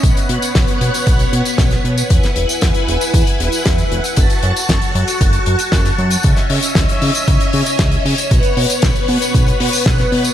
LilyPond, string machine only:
\new Staff \with { instrumentName = "String machine" } { \time 4/4 \key b \mixolydian \tempo 4 = 116 <b b' cis'' fis''>1 | <e' b' fis'' gis''>1 | <fis' a'' cis'''>1 | <cis' cis'' dis'' e''>1 |
<b b' fis''>1 | }